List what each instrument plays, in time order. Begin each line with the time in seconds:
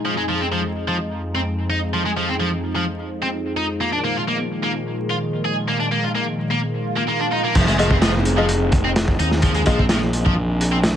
Already playing: analog synth pad G#3 D#4
0.05 analog synth pad F2 F3, distorted electric guitar F3
0.18 distorted electric guitar G#3
0.29 distorted electric guitar F3
0.41 distorted electric guitar C4
0.52 distorted electric guitar F3
0.88 distorted electric guitar F3
1.35 distorted electric guitar C4
1.70 distorted electric guitar D#4
1.94 distorted electric guitar F3
2.06 distorted electric guitar G#3
2.17 distorted electric guitar F3
2.29 distorted electric guitar C4
2.40 distorted electric guitar F3
2.76 distorted electric guitar F3
3.23 distorted electric guitar C4
3.57 distorted electric guitar D#4
3.81 analog synth pad A#2 D#3 G#3, distorted electric guitar A#3
3.93 distorted electric guitar D4
4.04 distorted electric guitar A#3
4.17 distorted electric guitar F4
4.28 distorted electric guitar A#3
4.63 distorted electric guitar A#3
5.10 distorted electric guitar F4
5.45 distorted electric guitar G#4
5.68 distorted electric guitar A#3
5.80 distorted electric guitar D4
5.92 distorted electric guitar A#3
6.04 distorted electric guitar F4
6.15 distorted electric guitar A#3
6.51 distorted electric guitar A#3
6.62 swell
6.97 distorted electric guitar A#3
7.09 distorted electric guitar A#3
7.21 distorted electric guitar D4
7.33 distorted electric guitar D#4
7.44 distorted electric guitar A#3
7.55 fingered electric bass F1, analog synth pad F3 C4 D#4 G#4, distorted electric guitar F3, kick, closed hi-hat, crash, downlifter
7.68 distorted electric guitar G#3, closed hi-hat
7.79 distorted electric guitar F3, grand piano G#3 F4 D#5, closed hi-hat
7.91 distorted electric guitar C4, kick
8.02 distorted electric guitar F3, snare, closed hi-hat
8.25 closed hi-hat
8.38 distorted electric guitar F3, grand piano G#3 F4 D#5
8.49 closed hi-hat
8.72 kick, closed hi-hat
8.85 distorted electric guitar C4
8.96 snare, closed hi-hat
9.08 kick
9.19 fingered electric bass D#2, distorted electric guitar D#4, closed hi-hat
9.31 snare
9.42 distorted electric guitar F3, kick, closed hi-hat
9.54 distorted electric guitar G#3, closed hi-hat
9.66 fingered electric bass A#1, distorted electric guitar F3, grand piano G#3 F4 D#5, kick, closed hi-hat
9.79 distorted electric guitar C4, kick
9.89 distorted electric guitar F3, snare, closed hi-hat
10.13 closed hi-hat
10.26 distorted electric guitar F3, kick
10.61 closed hi-hat
10.72 distorted electric guitar C4
10.84 snare, closed hi-hat